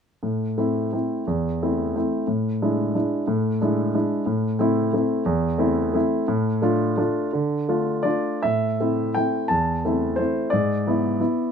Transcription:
grand piano
0.23 A2
0.58 A3 C4 E4
0.93 A3 C4 E4
1.27 E2
1.63 A3 C4 E4
1.96 A3 C4 E4
2.27 A2
2.62 G#3 D4 E4
2.95 G#3 D4 E4
3.27 A2
3.62 G#3 D4 E4
3.94 G#3 D4 E4
4.26 A2
4.59 A3 C4 E4
4.93 A3 C4 E4
5.26 E2
5.58 A3 C4 E4
5.94 A3 C4 E4
6.28 A2
6.62 A3 D4 F4
6.97 A3 D4 F4
7.33 D3
7.69 A3 D4 F4
8.03 A3 D4 F4 D5
8.43 A2 E5
8.80 A3 C4 E4
9.14 A3 C4 E4 G5
9.48 E2 A5
9.85 A3 C4 E4
10.16 A3 C4 E4 C5
10.50 G#2 D5
10.87 B3 E4
11.20 B3 E4

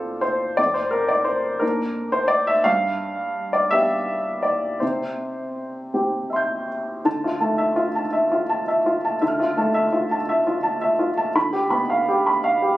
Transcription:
upright piano
Already playing: F2 C4 F4 A4 C5 D5 F5
0.21 C5
0.57 F2 D5
0.74 C5
0.91 A#4
1.08 D5
1.24 C5
1.60 A#3 D4 A#4
2.12 C5
2.28 D5
2.47 E5
2.64 G2 F5
3.53 D5
3.71 B3 G4 E5
4.43 D5
4.80 C3 C5
5.94 C4 G4
6.30 E5 C6
6.36 G6
7.05 D3 A5
7.24 F4
7.40 A3 A5
7.58 E5
7.76 F4
7.95 A5
8.13 E5
8.32 F4
8.49 A5
8.68 E5
8.86 F4
9.05 A5
9.22 D3 E5 A5
9.28 F6
9.40 F4
9.57 A3 A5
9.74 E5
9.93 F4
10.11 A5
10.29 E5
10.47 F4
10.63 A5
10.81 E5
10.99 F4
11.17 A5
11.35 D3 B5
11.53 G4
11.70 B3 B5
11.90 F5
12.08 G4
12.26 B5
12.44 F5
12.62 G4

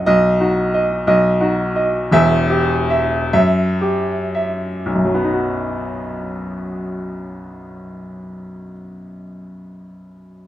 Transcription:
upright piano
0.06 B1 D#5
0.40 D#4 F#4
0.74 D#5
1.07 B1 D#5
1.41 D#4 F#4
1.76 D#5
2.11 E1 E2 E5
2.50 G4
2.90 E5
3.33 F#2 E5
3.81 G4
4.35 E5
4.86 B1
4.95 F#2
5.05 F#3
5.15 B3
5.24 D#4
5.33 F#4

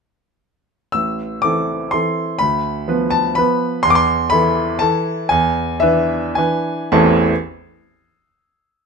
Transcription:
upright piano
0.92 A1 E6
1.42 E3 C4 A4 D6
1.91 E3 C4 A4 C6
2.39 D2 B5
2.88 F3 B3 B4
3.10 A5
3.35 F3 B3 B4 B5
3.83 E2 C6
3.90 D6
3.95 C6
4.30 E3 E4 A4 B5
4.79 E3 E4 A4 A5
5.29 E2 G#5
5.80 E3 D4 B4 E5
6.35 E3 D4 B4 G#5
6.92 A1 E2 E3 A3 C4 E4 A5

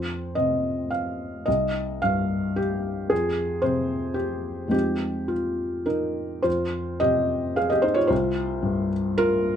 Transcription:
felt piano
Already playing: F2 C5
0.35 C3 D#5
0.90 F5
1.46 C2 D#5
2.02 G2 F5
2.56 G4
3.10 F2 G#4
3.62 C3 C5
4.14 G4
4.68 F2 G#3 C4 D#4 G4
5.28 F4
5.86 D#4 A#4
6.42 F2 F4 C5
7.00 C3 G4 D#5
7.56 G#4 F5
7.70 G4 D#5
7.82 D#4 C5
7.94 F4 C#5
8.07 C2 F4 C5
8.63 G2
9.18 F4 A#4

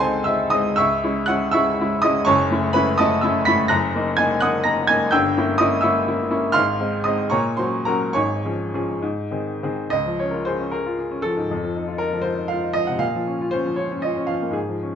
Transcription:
upright piano
Already playing: C#2 C4 D#4 G#4 A4 D#5 A5
0.00 G#3 C4 D#4 C5 G#5 C6
0.24 G#3 C4 D#4 E5 E6
0.50 G#3 C4 D#4 D#5 D#6
0.76 C#2 E5 C#6 E6
1.03 G#3 C#4 E4
1.26 G#3 C#4 E4 F#5 F#6
1.51 G#3 C#4 E4 E5 C#6 E6
1.80 G#3 C#4 E4
2.02 G#3 C#4 E4 D#5 D#6
2.25 F#1 F#2 C#5 A5 C#6
2.51 A3 C#4 E4
2.73 A3 C#4 E4 B4 B5
2.98 A3 C#4 E4 D#5 A5 D#6
3.21 A3 C#4 E4 E5 E6
3.45 A3 C#4 E4 B5 B6
3.68 F#1 F#2 A#5 F#6 A#6
3.95 A#3 D#4
4.17 A#3 D#4 G#5 G#6
4.41 A#3 D#4 F#5 D#6 F#6
4.64 A#3 D#4 A#5 A#6
4.87 A#3 D#4 G#5 G#6
5.11 G1 G2 G5 E6 G6
5.37 A#3 C#4 E4
5.58 A#3 C#4 E4 D#5 D#6
5.81 A#3 C#4 E4 E5 C#6 E6
6.07 A#3 C#4 E4
6.31 A#3 C#4 E4
6.52 G#1 G#2 F5 C6 F6
6.80 G#3 C4 D#4
7.04 G#3 C4 D#4 D#5 D#6
7.30 A#2 C#5 A#5 C#6
7.57 F#3 C#4 F#4 C5 C6
7.85 F#3 C#4 F#4 A#4 A#5
8.13 G#1 G#2 C#5 G#5 C#6
8.45 F3 C#4 G#4
8.74 F3 C#4 G#4
9.02 G#2
9.31 D#3 C4 G#4
9.63 D#3 C4 G#4
9.90 C#2 D#5
10.06 F3
10.19 C#4 C#5
10.30 F4 A#4
10.45 G#4 C5
10.60 C#4
10.71 G#4 A#4
10.86 F4
10.99 G#4
11.11 C#4
11.22 F3 A4
11.37 G#2
11.51 F2
11.63 F3
11.76 D#4
11.88 F4
11.98 D#4 A#4
12.13 F3
12.22 F4 C5
12.38 D#4
12.48 F4 F5
12.63 D#4
12.73 F3 D#5
12.87 C3 F#5
12.99 A#2 F5
13.15 F3
13.27 C#4
13.41 F4
13.51 C#4 C5
13.66 F3
13.76 F4 C#5
13.91 C#4
14.02 F4 D#5
14.17 C#4
14.27 F3 F5
14.42 A#3
14.51 G#2 G#4
14.69 F3
14.83 C#4

